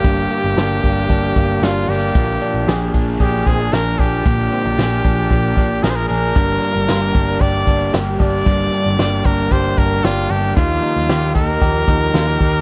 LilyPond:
<<
  \new Staff \with { instrumentName = "Trumpet" } { \time 4/4 \key g \phrygian \tempo 4 = 114 g'2. f'8 g'8~ | g'4. r8 g'8 aes'8 bes'8 g'8~ | g'2. bes'32 c''32 bes'16 bes'8~ | bes'2 d''4 r8 d''8~ |
d''4. bes'8 c''8 bes'8 f'8 g'8 | f'4. bes'2~ bes'8 | }
  \new Staff \with { instrumentName = "Clean electric guitar" } { \time 4/4 \key g \phrygian <g, bes d'>8 bes8 d'8 bes8 d'8 bes8 d'8 bes8 | bes,8 d'8 aes'8 d'8 aes'8 c'16 d'8. d'8 | bes,8 c'16 d'8. d'4 d'8 aes'8 d'8 | g,8 d'8 f'16 g'16 d'8 g'8 d'8 g'8 d'8 |
g,8 d'8 g'8 d'8 g'8 d'8 g'8 d'8 | ees8 ees'8 g'8 ees'8 g'8 ees'8 f'16 g'16 ees'8 | }
  \new Staff \with { instrumentName = "Overdriven electric guitar" } { \time 4/4 \key g \phrygian <g, d g bes d' g'>4 <g bes d' g'>8 <g bes d' g'>8 <g bes d' g'>4 <g bes d' g'>8 <g bes d' g'>8 | <bes, d f bes d'>4 <f bes d' aes'>8 <f bes d' aes'>8 <f bes d' aes'>4 <f bes d' aes'>8 <f bes d' aes'>8 | <bes, d f bes d'>4 <f bes d' aes'>8 <f bes d' aes'>8 <f bes d'>4 <f bes d' aes'>8 <f bes d' aes'>8 | <g, d g bes d' g'>4 <g bes d' g'>8 <g bes d' g'>8 <g bes d' g'>4 <g bes d' g'>8 <g bes d' g'>8 |
<g, d g bes d' g'>4 <g bes d' g'>8 <g bes d' g'>8 <g bes d' g'>4 <g bes d' g'>8 <g bes d' g'>8 | <ees f bes ees' g'>4 <f bes ees' g'>8 <bes ees' g'>8 <f bes ees' g'>4 <f bes ees' g'>8 <bes ees' g'>8 | }
  \new Staff \with { instrumentName = "Picked electric bass" } { \clef bass \time 4/4 \key g \phrygian g,,8 r16 g,,16 g,,8 g,,8 g,,8 g,,8 g,,8 g,,8 | bes,,8 r16 bes,,16 bes,,8 bes,,8 bes,,8 bes,,8 bes,,8 bes,,8 | bes,,8 r16 bes,,16 bes,,8 bes,,8 bes,,8 bes,,8 bes,,8 bes,,8 | g,,8 r16 g,,16 g,,8 g,,8 g,,8 g,,8 g,,8 g,,8 |
g,,8 r16 g,,16 g,,8 g,,8 g,,8 g,,8 g,,8 g,,8 | ees,8 r16 ees,16 ees,8 ees,8 ees,8 ees,8 ees,8 ees,8 | }
  \new DrumStaff \with { instrumentName = "Drums" } \drummode { \time 4/4 <hh bd>8 hh8 <hh sn>8 <hh bd>8 <hh bd>8 <hh bd>8 <hh sn>8 hho8 | <hh bd>8 hh8 <hh sn>8 <hh bd>8 <hh bd>8 <hh bd>8 <hh sn>8 <hho bd>8 | <hh bd>8 hh8 <hh sn>8 <hh bd>8 <hh bd>8 <hh bd>8 <hh sn>8 hho8 | <hh bd>8 hh8 <hh sn>8 <hh bd>8 <hh bd>8 <hh bd>8 <hh sn>8 <hho bd>8 |
<hh bd>8 hh8 <hh sn>8 <hh bd>8 <hh bd>8 <hh bd>8 <hh sn>8 hho8 | <hh bd>8 hh8 <hh sn>8 <hh bd>8 <hh bd>8 <hh bd>8 <hh sn>8 <hho bd>8 | }
>>